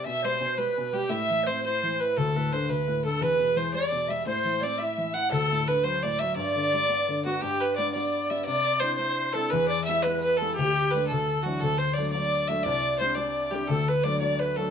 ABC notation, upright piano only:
X:1
M:6/8
L:1/8
Q:3/8=114
K:G
V:1 name="Upright piano" clef=bass
B,, G, B,, G, B,, G, | A,, E, C E E, E | D,, A,, D, D,, A,, D, | E,, B,, E, G, B,, G, |
A,, E, C E E, E | D,, A,, D, F, A,, F, | G,, D, G, B, D, B, | G,,2 [G,B,D] [G,B,D]2 [G,B,D] |
C,2 [CDE] [CDE]2 [CDE] | E,,2 [G,B,E] [G,B,E]2 [G,B,E] | D,,2 [G,A,D] D,,2 [E,F,D] | D,,2 [F,A,D] [F,A,D]2 [F,A,D] |
C,,2 [G,CD] [G,CD]2 [G,CD] | D,,2 [F,A,D] [F,A,D]2 [F,A,D] |]